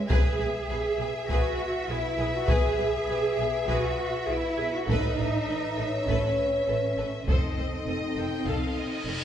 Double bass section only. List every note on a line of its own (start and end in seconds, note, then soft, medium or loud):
0.09 0.17 B1 medium
0.39 0.47 B1 soft
0.69 0.77 B1 soft
0.98 1.06 B1 soft
1.28 1.36 B1 medium
1.88 1.96 B1 soft
2.18 2.26 B1 soft
2.48 2.56 B1 medium
2.77 2.85 B1 soft
3.07 3.15 B1 soft
3.37 3.45 B1 soft
3.67 3.75 B1 medium
4.28 4.36 B1 soft
4.58 4.66 B1 soft
4.87 4.95 A1 medium
5.18 5.26 A1 soft
5.47 5.55 A1 soft
5.78 5.86 A1 soft
6.07 6.15 A1 medium
6.68 6.76 A1 soft
6.98 7.06 A1 soft
7.27 7.35 F1 medium
7.57 7.65 F1 soft
7.87 7.95 F1 soft
8.16 8.24 F1 soft
8.46 8.54 F1 soft
9.05 9.13 F1 soft